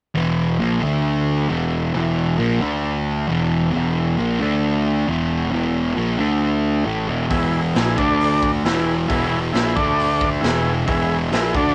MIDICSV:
0, 0, Header, 1, 5, 480
1, 0, Start_track
1, 0, Tempo, 446429
1, 172, Time_signature, 4, 2, 24, 8
1, 12629, End_track
2, 0, Start_track
2, 0, Title_t, "Transistor combo organ"
2, 0, Program_c, 0, 18
2, 7852, Note_on_c, 0, 64, 75
2, 7857, Note_on_c, 0, 68, 73
2, 7858, Note_on_c, 0, 71, 83
2, 8178, Note_off_c, 0, 64, 0
2, 8181, Note_off_c, 0, 68, 0
2, 8181, Note_off_c, 0, 71, 0
2, 8335, Note_on_c, 0, 64, 76
2, 8341, Note_on_c, 0, 68, 72
2, 8344, Note_on_c, 0, 71, 87
2, 8574, Note_off_c, 0, 64, 0
2, 8576, Note_on_c, 0, 62, 87
2, 8577, Note_off_c, 0, 68, 0
2, 8579, Note_off_c, 0, 71, 0
2, 8581, Note_on_c, 0, 69, 74
2, 8591, Note_on_c, 0, 74, 95
2, 9151, Note_off_c, 0, 62, 0
2, 9153, Note_off_c, 0, 69, 0
2, 9158, Note_off_c, 0, 74, 0
2, 9298, Note_on_c, 0, 64, 75
2, 9309, Note_on_c, 0, 68, 75
2, 9311, Note_on_c, 0, 71, 87
2, 9622, Note_off_c, 0, 64, 0
2, 9627, Note_off_c, 0, 68, 0
2, 9628, Note_off_c, 0, 71, 0
2, 9772, Note_on_c, 0, 64, 74
2, 9773, Note_on_c, 0, 68, 75
2, 9786, Note_on_c, 0, 71, 89
2, 10099, Note_off_c, 0, 64, 0
2, 10099, Note_off_c, 0, 68, 0
2, 10106, Note_off_c, 0, 71, 0
2, 10247, Note_on_c, 0, 64, 76
2, 10252, Note_on_c, 0, 68, 75
2, 10263, Note_on_c, 0, 71, 84
2, 10490, Note_on_c, 0, 62, 84
2, 10491, Note_off_c, 0, 64, 0
2, 10494, Note_off_c, 0, 68, 0
2, 10495, Note_on_c, 0, 69, 77
2, 10495, Note_on_c, 0, 74, 92
2, 10499, Note_off_c, 0, 71, 0
2, 11069, Note_off_c, 0, 62, 0
2, 11071, Note_off_c, 0, 69, 0
2, 11071, Note_off_c, 0, 74, 0
2, 11191, Note_on_c, 0, 64, 83
2, 11211, Note_on_c, 0, 68, 76
2, 11216, Note_on_c, 0, 71, 87
2, 11529, Note_off_c, 0, 64, 0
2, 11539, Note_off_c, 0, 68, 0
2, 11541, Note_off_c, 0, 71, 0
2, 11687, Note_on_c, 0, 64, 81
2, 11699, Note_on_c, 0, 71, 86
2, 11702, Note_on_c, 0, 68, 76
2, 12017, Note_off_c, 0, 64, 0
2, 12024, Note_off_c, 0, 71, 0
2, 12025, Note_off_c, 0, 68, 0
2, 12183, Note_on_c, 0, 64, 83
2, 12193, Note_on_c, 0, 68, 79
2, 12202, Note_on_c, 0, 71, 88
2, 12420, Note_off_c, 0, 64, 0
2, 12420, Note_on_c, 0, 62, 90
2, 12425, Note_off_c, 0, 68, 0
2, 12429, Note_off_c, 0, 71, 0
2, 12430, Note_on_c, 0, 69, 79
2, 12440, Note_on_c, 0, 74, 92
2, 12629, Note_off_c, 0, 62, 0
2, 12629, Note_off_c, 0, 69, 0
2, 12629, Note_off_c, 0, 74, 0
2, 12629, End_track
3, 0, Start_track
3, 0, Title_t, "Distorted electric guitar"
3, 0, Program_c, 1, 30
3, 156, Note_on_c, 1, 40, 90
3, 166, Note_on_c, 1, 47, 88
3, 177, Note_on_c, 1, 52, 98
3, 630, Note_off_c, 1, 47, 0
3, 634, Note_on_c, 1, 46, 89
3, 637, Note_off_c, 1, 40, 0
3, 640, Note_off_c, 1, 52, 0
3, 644, Note_on_c, 1, 53, 87
3, 649, Note_on_c, 1, 58, 91
3, 862, Note_off_c, 1, 46, 0
3, 867, Note_on_c, 1, 50, 83
3, 874, Note_off_c, 1, 53, 0
3, 878, Note_on_c, 1, 57, 82
3, 884, Note_off_c, 1, 58, 0
3, 889, Note_on_c, 1, 62, 92
3, 1590, Note_on_c, 1, 40, 88
3, 1593, Note_off_c, 1, 50, 0
3, 1599, Note_off_c, 1, 57, 0
3, 1603, Note_on_c, 1, 47, 90
3, 1604, Note_off_c, 1, 62, 0
3, 1610, Note_on_c, 1, 52, 99
3, 2069, Note_off_c, 1, 40, 0
3, 2081, Note_off_c, 1, 47, 0
3, 2082, Note_on_c, 1, 40, 93
3, 2085, Note_off_c, 1, 52, 0
3, 2096, Note_on_c, 1, 47, 85
3, 2105, Note_on_c, 1, 52, 99
3, 2557, Note_off_c, 1, 47, 0
3, 2559, Note_off_c, 1, 52, 0
3, 2560, Note_off_c, 1, 40, 0
3, 2561, Note_on_c, 1, 46, 78
3, 2564, Note_on_c, 1, 53, 82
3, 2576, Note_on_c, 1, 58, 101
3, 2794, Note_off_c, 1, 46, 0
3, 2798, Note_on_c, 1, 50, 92
3, 2801, Note_off_c, 1, 53, 0
3, 2807, Note_off_c, 1, 58, 0
3, 2811, Note_on_c, 1, 57, 95
3, 2819, Note_on_c, 1, 62, 98
3, 3518, Note_on_c, 1, 40, 93
3, 3519, Note_off_c, 1, 50, 0
3, 3525, Note_off_c, 1, 57, 0
3, 3527, Note_on_c, 1, 47, 90
3, 3529, Note_off_c, 1, 62, 0
3, 3538, Note_on_c, 1, 52, 98
3, 3984, Note_off_c, 1, 40, 0
3, 3997, Note_off_c, 1, 47, 0
3, 3997, Note_on_c, 1, 40, 89
3, 4008, Note_off_c, 1, 52, 0
3, 4010, Note_on_c, 1, 47, 91
3, 4024, Note_on_c, 1, 52, 95
3, 4478, Note_off_c, 1, 40, 0
3, 4481, Note_off_c, 1, 47, 0
3, 4486, Note_on_c, 1, 46, 85
3, 4491, Note_off_c, 1, 52, 0
3, 4499, Note_on_c, 1, 53, 92
3, 4508, Note_on_c, 1, 58, 97
3, 4722, Note_off_c, 1, 46, 0
3, 4728, Note_on_c, 1, 50, 87
3, 4729, Note_off_c, 1, 53, 0
3, 4733, Note_off_c, 1, 58, 0
3, 4748, Note_on_c, 1, 57, 92
3, 4758, Note_on_c, 1, 62, 100
3, 5443, Note_off_c, 1, 50, 0
3, 5453, Note_off_c, 1, 57, 0
3, 5453, Note_on_c, 1, 40, 90
3, 5458, Note_off_c, 1, 62, 0
3, 5460, Note_on_c, 1, 47, 92
3, 5474, Note_on_c, 1, 52, 96
3, 5920, Note_off_c, 1, 40, 0
3, 5923, Note_off_c, 1, 47, 0
3, 5933, Note_on_c, 1, 40, 98
3, 5936, Note_off_c, 1, 52, 0
3, 5936, Note_on_c, 1, 47, 96
3, 5948, Note_on_c, 1, 52, 95
3, 6405, Note_off_c, 1, 40, 0
3, 6406, Note_off_c, 1, 47, 0
3, 6411, Note_on_c, 1, 46, 92
3, 6413, Note_off_c, 1, 52, 0
3, 6426, Note_on_c, 1, 53, 89
3, 6433, Note_on_c, 1, 58, 92
3, 6643, Note_off_c, 1, 46, 0
3, 6648, Note_on_c, 1, 50, 86
3, 6652, Note_off_c, 1, 53, 0
3, 6655, Note_off_c, 1, 58, 0
3, 6660, Note_on_c, 1, 57, 84
3, 6667, Note_on_c, 1, 62, 92
3, 7359, Note_off_c, 1, 50, 0
3, 7363, Note_on_c, 1, 45, 89
3, 7369, Note_off_c, 1, 57, 0
3, 7373, Note_off_c, 1, 62, 0
3, 7375, Note_on_c, 1, 52, 84
3, 7382, Note_on_c, 1, 57, 96
3, 7601, Note_off_c, 1, 45, 0
3, 7603, Note_on_c, 1, 40, 83
3, 7607, Note_off_c, 1, 52, 0
3, 7610, Note_off_c, 1, 57, 0
3, 7613, Note_on_c, 1, 47, 91
3, 7626, Note_on_c, 1, 52, 88
3, 7841, Note_off_c, 1, 40, 0
3, 7846, Note_off_c, 1, 47, 0
3, 7852, Note_off_c, 1, 52, 0
3, 7854, Note_on_c, 1, 40, 88
3, 7863, Note_on_c, 1, 47, 95
3, 7876, Note_on_c, 1, 52, 101
3, 8327, Note_off_c, 1, 40, 0
3, 8331, Note_off_c, 1, 47, 0
3, 8335, Note_on_c, 1, 46, 88
3, 8338, Note_off_c, 1, 52, 0
3, 8343, Note_on_c, 1, 53, 90
3, 8359, Note_on_c, 1, 58, 101
3, 8566, Note_off_c, 1, 46, 0
3, 8570, Note_on_c, 1, 50, 86
3, 8571, Note_off_c, 1, 53, 0
3, 8579, Note_off_c, 1, 58, 0
3, 8581, Note_on_c, 1, 57, 89
3, 8591, Note_on_c, 1, 62, 96
3, 9285, Note_off_c, 1, 50, 0
3, 9290, Note_off_c, 1, 57, 0
3, 9291, Note_on_c, 1, 40, 91
3, 9295, Note_off_c, 1, 62, 0
3, 9306, Note_on_c, 1, 47, 87
3, 9314, Note_on_c, 1, 52, 91
3, 9750, Note_off_c, 1, 40, 0
3, 9760, Note_off_c, 1, 47, 0
3, 9763, Note_on_c, 1, 40, 84
3, 9771, Note_off_c, 1, 52, 0
3, 9773, Note_on_c, 1, 47, 97
3, 9784, Note_on_c, 1, 52, 104
3, 10241, Note_off_c, 1, 47, 0
3, 10242, Note_off_c, 1, 40, 0
3, 10245, Note_on_c, 1, 46, 92
3, 10252, Note_off_c, 1, 52, 0
3, 10258, Note_on_c, 1, 53, 94
3, 10266, Note_on_c, 1, 58, 88
3, 10483, Note_off_c, 1, 46, 0
3, 10489, Note_off_c, 1, 53, 0
3, 10493, Note_off_c, 1, 58, 0
3, 10494, Note_on_c, 1, 50, 83
3, 10503, Note_on_c, 1, 57, 99
3, 10510, Note_on_c, 1, 62, 97
3, 11205, Note_on_c, 1, 40, 93
3, 11208, Note_off_c, 1, 50, 0
3, 11212, Note_off_c, 1, 57, 0
3, 11214, Note_on_c, 1, 47, 97
3, 11216, Note_off_c, 1, 62, 0
3, 11221, Note_on_c, 1, 52, 92
3, 11667, Note_off_c, 1, 40, 0
3, 11680, Note_on_c, 1, 40, 89
3, 11682, Note_off_c, 1, 47, 0
3, 11691, Note_off_c, 1, 52, 0
3, 11695, Note_on_c, 1, 47, 92
3, 11704, Note_on_c, 1, 52, 97
3, 12159, Note_off_c, 1, 47, 0
3, 12161, Note_off_c, 1, 40, 0
3, 12163, Note_on_c, 1, 46, 86
3, 12168, Note_off_c, 1, 52, 0
3, 12173, Note_on_c, 1, 53, 90
3, 12186, Note_on_c, 1, 58, 102
3, 12403, Note_off_c, 1, 46, 0
3, 12407, Note_off_c, 1, 53, 0
3, 12414, Note_off_c, 1, 58, 0
3, 12417, Note_on_c, 1, 50, 89
3, 12431, Note_on_c, 1, 57, 91
3, 12438, Note_on_c, 1, 62, 90
3, 12629, Note_off_c, 1, 50, 0
3, 12629, Note_off_c, 1, 57, 0
3, 12629, Note_off_c, 1, 62, 0
3, 12629, End_track
4, 0, Start_track
4, 0, Title_t, "Fingered electric bass"
4, 0, Program_c, 2, 33
4, 179, Note_on_c, 2, 28, 86
4, 623, Note_off_c, 2, 28, 0
4, 652, Note_on_c, 2, 34, 86
4, 876, Note_off_c, 2, 34, 0
4, 897, Note_on_c, 2, 38, 89
4, 1572, Note_off_c, 2, 38, 0
4, 1622, Note_on_c, 2, 28, 87
4, 2064, Note_off_c, 2, 28, 0
4, 2103, Note_on_c, 2, 28, 82
4, 2545, Note_off_c, 2, 28, 0
4, 2572, Note_on_c, 2, 34, 86
4, 2796, Note_off_c, 2, 34, 0
4, 2832, Note_on_c, 2, 38, 86
4, 3500, Note_off_c, 2, 38, 0
4, 3553, Note_on_c, 2, 28, 91
4, 3990, Note_off_c, 2, 28, 0
4, 4041, Note_on_c, 2, 28, 88
4, 4474, Note_off_c, 2, 28, 0
4, 4511, Note_on_c, 2, 34, 93
4, 4726, Note_off_c, 2, 34, 0
4, 4749, Note_on_c, 2, 38, 88
4, 5418, Note_off_c, 2, 38, 0
4, 5468, Note_on_c, 2, 28, 87
4, 5908, Note_off_c, 2, 28, 0
4, 5949, Note_on_c, 2, 28, 89
4, 6388, Note_off_c, 2, 28, 0
4, 6432, Note_on_c, 2, 34, 87
4, 6646, Note_off_c, 2, 34, 0
4, 6671, Note_on_c, 2, 38, 93
4, 7339, Note_off_c, 2, 38, 0
4, 7384, Note_on_c, 2, 33, 86
4, 7602, Note_off_c, 2, 33, 0
4, 7622, Note_on_c, 2, 28, 91
4, 7841, Note_off_c, 2, 28, 0
4, 7861, Note_on_c, 2, 28, 85
4, 8304, Note_off_c, 2, 28, 0
4, 8359, Note_on_c, 2, 34, 89
4, 8570, Note_off_c, 2, 34, 0
4, 8584, Note_on_c, 2, 38, 85
4, 9256, Note_off_c, 2, 38, 0
4, 9307, Note_on_c, 2, 28, 86
4, 9748, Note_off_c, 2, 28, 0
4, 9781, Note_on_c, 2, 28, 91
4, 10224, Note_off_c, 2, 28, 0
4, 10257, Note_on_c, 2, 34, 85
4, 10479, Note_off_c, 2, 34, 0
4, 10506, Note_on_c, 2, 38, 88
4, 11178, Note_off_c, 2, 38, 0
4, 11226, Note_on_c, 2, 28, 89
4, 11668, Note_off_c, 2, 28, 0
4, 11698, Note_on_c, 2, 28, 92
4, 12144, Note_off_c, 2, 28, 0
4, 12187, Note_on_c, 2, 34, 91
4, 12405, Note_off_c, 2, 34, 0
4, 12424, Note_on_c, 2, 38, 89
4, 12629, Note_off_c, 2, 38, 0
4, 12629, End_track
5, 0, Start_track
5, 0, Title_t, "Drums"
5, 7856, Note_on_c, 9, 36, 107
5, 7857, Note_on_c, 9, 46, 48
5, 7964, Note_off_c, 9, 36, 0
5, 7964, Note_off_c, 9, 46, 0
5, 8334, Note_on_c, 9, 46, 49
5, 8346, Note_on_c, 9, 38, 103
5, 8442, Note_off_c, 9, 46, 0
5, 8454, Note_off_c, 9, 38, 0
5, 8579, Note_on_c, 9, 36, 107
5, 8686, Note_off_c, 9, 36, 0
5, 8823, Note_on_c, 9, 46, 53
5, 8930, Note_off_c, 9, 46, 0
5, 9059, Note_on_c, 9, 36, 86
5, 9167, Note_off_c, 9, 36, 0
5, 9302, Note_on_c, 9, 46, 55
5, 9313, Note_on_c, 9, 38, 101
5, 9409, Note_off_c, 9, 46, 0
5, 9421, Note_off_c, 9, 38, 0
5, 9782, Note_on_c, 9, 36, 98
5, 9783, Note_on_c, 9, 46, 53
5, 9889, Note_off_c, 9, 36, 0
5, 9890, Note_off_c, 9, 46, 0
5, 10261, Note_on_c, 9, 46, 50
5, 10273, Note_on_c, 9, 38, 104
5, 10369, Note_off_c, 9, 46, 0
5, 10381, Note_off_c, 9, 38, 0
5, 10500, Note_on_c, 9, 36, 108
5, 10607, Note_off_c, 9, 36, 0
5, 10745, Note_on_c, 9, 46, 53
5, 10852, Note_off_c, 9, 46, 0
5, 10979, Note_on_c, 9, 36, 83
5, 11086, Note_off_c, 9, 36, 0
5, 11217, Note_on_c, 9, 46, 50
5, 11229, Note_on_c, 9, 38, 97
5, 11325, Note_off_c, 9, 46, 0
5, 11337, Note_off_c, 9, 38, 0
5, 11694, Note_on_c, 9, 46, 50
5, 11695, Note_on_c, 9, 36, 102
5, 11802, Note_off_c, 9, 46, 0
5, 11803, Note_off_c, 9, 36, 0
5, 12176, Note_on_c, 9, 46, 51
5, 12188, Note_on_c, 9, 38, 103
5, 12284, Note_off_c, 9, 46, 0
5, 12296, Note_off_c, 9, 38, 0
5, 12414, Note_on_c, 9, 36, 105
5, 12522, Note_off_c, 9, 36, 0
5, 12629, End_track
0, 0, End_of_file